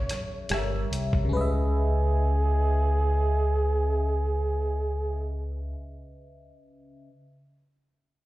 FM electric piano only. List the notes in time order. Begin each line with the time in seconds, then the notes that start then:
Already playing: F#3 C#4 G#4 A#4 E5
0.50 G3 G4 A4 C#5
0.54 E5
0.58 A#4
1.25 C#3
1.29 C#4 B4
1.37 D#5
1.41 E5